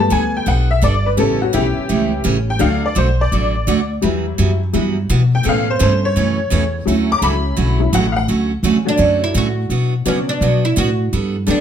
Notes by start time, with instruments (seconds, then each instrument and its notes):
Already playing: upright bass G2
0.00 honky-tonk piano G3 A3 B3 A5
0.10 upright bass D2, steel-string acoustic guitar G3 B3 D4 A4, honky-tonk piano G#5
0.37 honky-tonk piano G5
0.46 upright bass B1, steel-string acoustic guitar G3 B3 D4 A4, honky-tonk piano F#5
0.71 honky-tonk piano E5
0.82 upright bass G1, steel-string acoustic guitar G3 B3 D4 A4, honky-tonk piano D5
1.06 honky-tonk piano B4
1.17 upright bass A1, steel-string acoustic guitar C#3 E3 A3 C#4 G4, honky-tonk piano G3 B3 C#4 A4
1.42 honky-tonk piano F#4
1.53 upright bass B1, steel-string acoustic guitar C#3 E3 A3 C#4 G4, honky-tonk piano E4 G4
1.77 muted upright bass stroke
1.89 upright bass C#2, steel-string acoustic guitar C#3 E3 A3 C#4 G4
2.24 upright bass A1, steel-string acoustic guitar C#3 E3 A3 C#4 G4
2.50 honky-tonk piano G5
2.59 upright bass D2, steel-string acoustic guitar D3 F#3 A3 D4 F#4, honky-tonk piano F#3 A3 D4 F5
2.86 honky-tonk piano D5
2.95 upright bass B1, steel-string acoustic guitar D3 F#3 A3 D4 F#4, honky-tonk piano C5
3.21 honky-tonk piano D5
3.32 upright bass A1, steel-string acoustic guitar D3 F#3 A3 D4 F#4
3.67 upright bass D2, steel-string acoustic guitar D3 F#3 A3 D4 F#4
4.02 upright bass E2, steel-string acoustic guitar E3 G3 B3 F#4, honky-tonk piano F#3 G3 E4
4.38 upright bass F#2, steel-string acoustic guitar E3 G3 B3 F#4
4.73 upright bass G2, steel-string acoustic guitar E3 G3 B3 F#4, honky-tonk piano F#3 G3 E4
5.09 upright bass B2, steel-string acoustic guitar E3 G3 B3 F#4
5.35 honky-tonk piano G5
5.43 upright bass A2, steel-string acoustic guitar B2 E3 A3 C#4 A4, honky-tonk piano A3 B3
5.48 honky-tonk piano C#4 F5
5.70 honky-tonk piano C5
5.79 upright bass G2, steel-string acoustic guitar B2 E3 A3 C#4 A4, honky-tonk piano C5
6.05 honky-tonk piano C#5
6.16 upright bass F#2, steel-string acoustic guitar B2 E3 A3 C#4 A4
6.50 upright bass E2, steel-string acoustic guitar B2 E3 A3 C#4 A4
6.85 upright bass D2, steel-string acoustic guitar D3 F#3 A3 C#4 F#4, honky-tonk piano F#3 C#4 E4
7.12 honky-tonk piano D6
7.18 upright bass C#2, steel-string acoustic guitar D3 F#3 A3 C#4, honky-tonk piano A#5
7.23 steel-string acoustic guitar F#4, honky-tonk piano B5
7.56 upright bass B1, steel-string acoustic guitar D3 F#3 A3 C#4 F#4
7.80 honky-tonk piano F#3 C#4 E4
7.93 upright bass A1, steel-string acoustic guitar D3 F#3 A3 C#4 F#4, honky-tonk piano F#5
8.12 honky-tonk piano F5
8.16 honky-tonk piano F#5
8.28 upright bass D2, steel-string acoustic guitar D3 F#3 A3 C#4 F#4
8.63 upright bass E2, steel-string acoustic guitar D3 F#3 A3 C#4 F#4, oud C#4
8.85 honky-tonk piano F#3 A3 D4 F#4 C#5, oud D4
8.97 upright bass F#2, steel-string acoustic guitar D3 F#3 A3 C#4 F#4
9.24 oud E4
9.34 upright bass A2, steel-string acoustic guitar D3 F#3 A3 C#4 F#4, oud F#4
9.70 upright bass B2, steel-string acoustic guitar B2 F#3 B3 D4 F#4
10.05 honky-tonk piano B2 F#3 B3 F#4 D5, steel-string acoustic guitar B2 F#3 B3 D4 F#4, upright bass C#3, oud C#4
10.29 oud D4
10.41 upright bass B2, steel-string acoustic guitar B2 F#3 B3 D4 F#4
10.65 oud E4
10.76 upright bass A2, steel-string acoustic guitar B2 F#3 B3 D4 F#4, oud F#4
11.13 upright bass G2, steel-string acoustic guitar G3 B3 D4 A4
11.47 upright bass F#2, honky-tonk piano D3 A3 B3 D4 G4, steel-string acoustic guitar G3 B3 D4 A4, oud D4